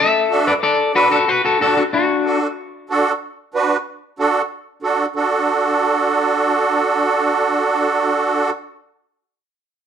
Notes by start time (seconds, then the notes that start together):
0.00 A4 E5
0.31 D4 F#4 A4
0.47 B4 D5
0.63 A4 D5
0.95 D4 F#4 A4 B4
1.11 F#4 A4
1.28 F#4 B4
1.45 F#4 A4
1.60 D4 F#4 A4
1.77 D4 F#4
1.93 D4 F#4
2.25 D4 F#4 A4
2.90 D4 F#4 A4
3.54 D4 F#4 B4
4.19 D4 F#4 A4
4.83 D4 F#4 A4
5.15 D4 F#4 A4